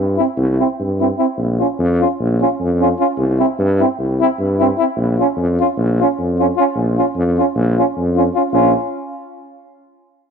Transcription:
Already playing: G2
0.17 C4 E4
0.37 C2
0.59 C4 E4
0.79 G2
1.00 C4 E4
1.18 C4 E4
1.37 A#1
1.59 C#4 F4
1.79 F2
2.00 C#4 F4
2.19 A#1
2.41 C#4 F4
2.60 F2
2.81 C#4 F4
2.99 C#4 F4
3.17 C2
3.39 C4 E4
3.59 G2
3.80 C4 E4
3.99 C2
4.21 C4 E4
4.39 G2
4.59 C4 E4
4.78 C4 E4
4.96 A#1
5.18 C#4 F4
5.37 F2
5.60 C#4 F4
5.77 A#1
6.00 C#4 F4
6.19 F2
6.39 C#4 F4
6.57 C#4 F4
6.75 A#1
6.98 C#4 F4
7.16 F2
7.38 C#4 F4
7.56 A#1
7.78 C#4 F4
7.97 F2
8.16 C#4 F4
8.35 C#4 F4
8.52 A#1 C#4 F4

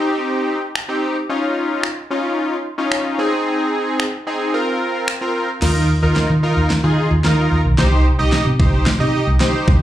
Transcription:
Already playing: C4 D#4 G4
0.75 finger snap
0.89 C4 D#4 G4
1.29 C#4 D#4 F4
1.83 finger snap
2.11 C#4 D#4 F4
2.78 C#4 D#4 F4
2.92 finger snap
3.19 C4 D#4 G#4
4.00 finger snap
4.27 C4 D#4 G#4
4.54 C4 F4 A#4
5.08 finger snap
5.21 C4 F4 A#4
5.62 D#2 D#4 F4 A#4, snare, crash
6.02 D#2 D#4 F4 A#4
6.16 muted fingered electric bass stroke, snare
6.30 D#3
6.43 D#4 F4 A#4
6.57 D#2
6.70 snare
6.84 D#3 D#4 F4 G#4
7.11 D#2
7.24 D#3 D#4 F4 A#4, snare
7.51 D#2
7.65 B1
7.78 C2 D#4 G4 C5, snare
8.19 C2 D#4 G4 D#5
8.32 muted fingered electric bass stroke, snare
8.46 C3
8.59 D#4 G4 C5, kick
8.73 C2
8.86 muted fingered electric bass stroke, snare
9.00 C3 D#4 G4 D#5
9.27 C2
9.40 D#4 G4 C5, snare
9.68 C2, kick

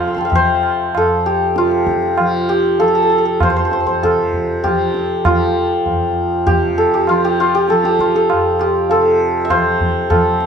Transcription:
Already playing: F2 C3 F3 F4 G4 A4 C5
0.00 tabla na
0.07 E6 F6
0.14 A5 C6, tabla ke
0.21 G5
0.25 F5
0.30 F3 E5, tabla tin, tabla ge
0.35 C5
0.63 tabla na
0.95 F2 A4, tabla na
1.26 G4
1.56 C3 F4, tabla te
1.71 tabla te
1.87 tabla ke
2.02 tabla te
2.18 F3, tabla na
2.49 G4
2.79 F3 A4, tabla tin
2.88 A4
2.95 A4
3.02 A4
3.10 A4
3.18 A4
3.25 A4
3.40 F2 C5, tabla na, tabla ge
3.50 C5
3.56 C5
3.65 C5
3.71 C5, tabla te
3.80 C5
3.86 C5, tabla ge
4.03 C3 A4, tabla na, tabla ge
4.33 tabla ge
4.64 F3 G4, tabla na, tabla ge
4.94 tabla te
5.25 F3 F4, tabla na, tabla ge
5.86 F2, tabla tin, tabla ge
6.47 C3 G4, tabla tin, tabla ge
6.78 A4
6.94 G4
7.07 F3 F4, tabla na
7.25 G4
7.40 F4
7.55 G4
7.68 F3 A4, tabla te
7.84 G4, tabla te
7.99 F4, tabla ke
8.15 A4, tabla te
8.30 F2, tabla na
8.59 G4, tabla na
8.90 C3 A4, tabla tin
9.45 E5
9.50 F3 C5, tabla na, tabla ge
9.80 tabla ge
10.10 F3 A4, tabla na, tabla ge
10.40 tabla te

